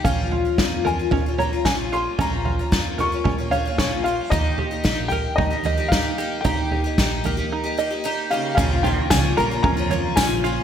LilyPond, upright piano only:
\new Staff \with { instrumentName = "Upright piano" } { \time 4/4 \key bes \dorian \tempo 4 = 113 f''4. aes''8 r8 bes''8 aes''8 c'''8 | bes''4. des'''8 r8 f''8 des''8 f''8 | ees''4. g''8 ees''4 f''4 | g''2. r8 f''8 |
f''8 g''8 aes''8 bes''8 bes''4 aes''4 | }